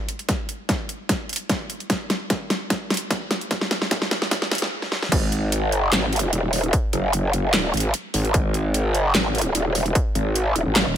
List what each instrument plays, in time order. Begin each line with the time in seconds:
0.09 closed hi-hat
0.19 closed hi-hat
0.29 kick, snare, closed hi-hat
0.49 closed hi-hat
0.69 kick, snare, closed hi-hat
0.89 closed hi-hat
1.09 kick, snare, closed hi-hat
1.29 closed hi-hat
1.33 closed hi-hat
1.36 closed hi-hat
1.49 kick, snare, closed hi-hat
1.70 closed hi-hat
1.80 closed hi-hat
1.90 kick, snare, closed hi-hat
2.10 snare, closed hi-hat
2.30 kick, snare, closed hi-hat
2.50 snare, closed hi-hat
2.70 kick, snare, closed hi-hat
2.90 snare, closed hi-hat
2.94 closed hi-hat
2.97 closed hi-hat
3.11 kick, snare, closed hi-hat
3.31 snare, closed hi-hat
3.41 closed hi-hat
3.51 kick, snare, closed hi-hat
3.61 snare
3.71 snare, closed hi-hat
3.82 snare
3.91 kick, snare, closed hi-hat
4.02 snare
4.11 snare, closed hi-hat
4.22 snare
4.31 kick, snare, closed hi-hat
4.42 snare
4.51 snare, closed hi-hat
4.55 closed hi-hat
4.58 snare, closed hi-hat
4.82 snare
4.92 snare
5.03 snare
5.12 wobble bass G#1, kick, closed hi-hat, crash
5.32 closed hi-hat
5.52 closed hi-hat
5.68 wobble bass G1
5.72 closed hi-hat
5.92 wobble bass G#1, snare, clap, closed hi-hat
6.13 closed hi-hat
6.16 closed hi-hat
6.19 closed hi-hat
6.33 wobble bass D#1, closed hi-hat
6.53 open hi-hat
6.64 closed hi-hat
6.73 kick, closed hi-hat
6.93 wobble bass F#1, closed hi-hat
7.13 closed hi-hat
7.33 closed hi-hat
7.54 snare, clap, closed hi-hat
7.74 wobble bass G#1, closed hi-hat
7.77 closed hi-hat
7.80 closed hi-hat
7.94 closed hi-hat
8.14 wobble bass G#1, open hi-hat
8.25 closed hi-hat
8.34 wobble bass G#1, kick, closed hi-hat
8.54 closed hi-hat
8.74 closed hi-hat
8.90 wobble bass G1
8.94 closed hi-hat
9.15 wobble bass G#1, snare, clap, closed hi-hat
9.35 closed hi-hat
9.38 closed hi-hat
9.41 closed hi-hat
9.55 wobble bass D#1, closed hi-hat
9.75 open hi-hat
9.86 closed hi-hat
9.95 kick, closed hi-hat
10.15 wobble bass G#1, closed hi-hat
10.36 closed hi-hat
10.56 wobble bass D#1, closed hi-hat
10.66 wobble bass G#1
10.76 snare, clap, closed hi-hat
10.86 wobble bass D#1